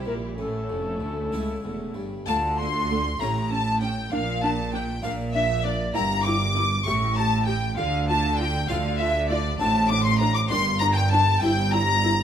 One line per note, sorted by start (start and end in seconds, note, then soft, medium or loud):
0.00 0.37 G3 medium
0.00 0.12 E4 soft
0.00 0.36 E4 medium
0.00 0.13 G4 soft
0.00 0.37 G4 medium
0.06 0.39 A#1 soft
0.06 0.35 A#2 soft
0.06 0.39 A#2 medium
0.06 0.14 A#4 medium
0.38 0.71 A1 medium
0.38 0.67 A2 soft
0.38 0.71 A2 medium
0.38 2.03 A3 medium
0.38 2.04 C#4 medium
0.38 2.07 E4 soft
0.38 1.93 A4 medium
0.70 1.02 F1 medium
0.70 0.98 F2 soft
0.70 1.02 F2 medium
1.01 1.29 D2 soft
1.01 1.33 D2 medium
1.01 1.34 D2 soft
1.32 1.61 C#2 soft
1.32 1.64 C#2 soft
1.32 1.64 C#2 medium
1.32 2.00 A3 soft
1.32 2.00 C#4 soft
1.32 2.01 E4 soft
1.64 1.95 E1 medium
1.64 1.93 E2 soft
1.64 1.96 E2 medium
1.94 2.26 G1 medium
1.94 2.23 G2 soft
1.94 2.27 G2 medium
2.26 3.09 D2 medium
2.26 3.06 D3 medium
2.26 3.09 D3 medium
2.26 3.16 A3 soft
2.26 2.36 A3 medium
2.26 3.16 D4 soft
2.26 3.16 F4 soft
2.26 2.34 A5 loud
2.26 2.59 A5 medium
2.26 2.35 A5 medium
2.57 2.68 A3 medium
2.57 3.18 C6 medium
2.57 3.18 C6 loud
2.57 3.22 C6 loud
2.90 2.98 A3 medium
3.19 4.01 A1 medium
3.19 3.98 A2 medium
3.19 4.01 A2 medium
3.19 4.07 A3 soft
3.19 4.08 C#4 soft
3.19 3.29 C#4 medium
3.19 4.08 G4 soft
3.19 3.53 A#5 medium
3.19 3.51 A#5 medium
3.19 3.29 A#5 medium
3.50 3.59 C#4 medium
3.50 3.81 A5 loud
3.50 3.80 A5 medium
3.50 3.81 A5 medium
3.80 3.89 C#4 medium
3.80 4.11 G5 medium
3.80 3.88 G5 medium
3.80 4.11 G5 medium
4.11 4.92 A#1 medium
4.11 4.90 A#2 medium
4.11 4.92 A#2 medium
4.11 4.20 D4 medium
4.11 4.41 F5 medium
4.11 4.42 F5 loud
4.42 4.51 D4 medium
4.42 4.49 A5 medium
4.42 4.73 A5 medium
4.72 4.82 D4 medium
4.72 4.79 G5 medium
4.72 5.04 G5 medium
4.72 4.82 G5 medium
5.02 5.84 A#1 medium
5.02 5.81 A#2 medium
5.02 5.84 A#2 medium
5.02 5.69 A#3 soft
5.02 5.69 D4 medium
5.02 5.11 D4 medium
5.02 5.69 F4 medium
5.02 5.09 F5 medium
5.02 5.12 F5 medium
5.02 5.13 F5 medium
5.34 5.42 D4 medium
5.34 5.63 E5 loud
5.34 5.64 E5 medium
5.64 5.73 D4 medium
5.64 5.97 D5 medium
5.64 5.95 D5 medium
5.64 5.74 D5 medium
5.94 6.75 G1 medium
5.94 6.73 G2 medium
5.94 6.75 G2 medium
5.94 6.82 A#3 medium
5.94 6.02 E4 medium
5.94 6.82 E4 soft
5.94 6.82 G4 soft
5.94 6.24 A#5 loud
5.94 6.25 A#5 loud
6.24 6.34 E4 medium
6.24 6.85 D6 medium
6.24 6.85 D6 loud
6.24 6.85 D6 medium
6.55 6.63 E4 medium
6.84 7.66 A1 medium
6.84 7.66 A2 loud
6.84 7.64 A2 medium
6.84 7.74 A3 soft
6.84 7.74 E4 soft
6.84 6.93 G4 medium
6.84 6.92 C#6 loud
6.84 7.16 C#6 medium
6.84 7.16 C#6 loud
6.88 7.74 G4 soft
7.16 7.24 G4 medium
7.16 7.46 A5 loud
7.16 7.21 A#5 medium
7.20 7.46 A5 medium
7.46 7.54 G4 medium
7.46 7.77 G5 medium
7.46 7.76 G5 loud
7.46 7.78 G5 loud
7.77 8.58 D2 medium
7.77 8.58 D3 medium
7.77 8.56 D3 medium
7.77 7.85 F4 medium
7.77 8.07 F5 loud
7.77 8.08 F5 medium
7.77 7.85 F5 medium
8.08 8.17 F4 medium
8.08 8.38 A5 medium
8.08 8.38 A5 loud
8.38 8.47 F4 medium
8.38 8.68 G5 loud
8.38 8.69 G5 loud
8.68 9.49 D2 medium
8.68 9.46 D3 medium
8.68 9.49 D3 loud
8.68 9.34 A3 medium
8.68 9.34 D4 medium
8.68 9.34 F4 medium
8.68 8.78 F4 medium
8.68 8.76 F5 loud
8.68 8.99 F5 loud
8.68 9.01 F5 medium
8.97 9.08 F4 medium
8.97 9.28 E5 loud
8.97 9.29 E5 medium
8.97 9.30 E5 medium
9.28 9.38 F4 medium
9.28 9.58 D5 loud
9.28 9.36 D5 medium
9.28 9.60 D5 medium
9.58 10.39 A1 loud
9.58 10.37 A2 medium
9.58 10.40 A2 loud
9.58 10.46 C4 medium
9.58 9.67 D4 medium
9.58 10.46 D4 medium
9.58 10.47 F#4 medium
9.58 9.89 A5 loud
9.58 9.92 A5 loud
9.58 9.69 A5 loud
9.88 9.98 D4 medium
9.88 10.04 D6 loud
9.88 10.05 D6 loud
10.03 10.19 C6 loud
10.03 10.20 C6 loud
10.03 10.11 C6 loud
10.18 10.29 D4 medium
10.18 10.34 A#5 loud
10.18 10.35 A#5 loud
10.18 10.36 A#5 loud
10.34 10.40 D6 loud
10.34 10.50 D6 loud
10.49 11.31 G1 medium
10.49 11.28 G2 medium
10.49 11.31 G2 loud
10.49 11.37 A#3 soft
10.49 10.58 D4 medium
10.49 11.38 D4 medium
10.49 11.38 G4 medium
10.49 10.79 C6 loud
10.49 10.81 C6 loud
10.79 10.89 D4 medium
10.79 10.85 A#5 loud
10.79 10.97 A#5 medium
10.79 10.96 A#5 loud
10.94 11.10 G5 loud
10.94 11.11 G5 loud
11.08 11.20 D4 medium
11.08 11.40 A5 loud
11.08 11.42 A5 loud
11.08 11.41 A5 loud
11.40 12.22 G1 loud
11.40 12.19 G2 medium
11.40 12.22 G2 loud
11.40 12.23 C4 medium
11.40 12.23 E4 medium
11.40 11.50 E4 medium
11.40 12.23 G4 medium
11.40 11.74 G5 loud
11.40 11.72 G5 loud
11.40 11.71 G5 loud
11.71 11.81 E4 medium
11.71 12.23 A#5 loud
11.71 12.12 A#5 loud
12.04 12.12 E4 medium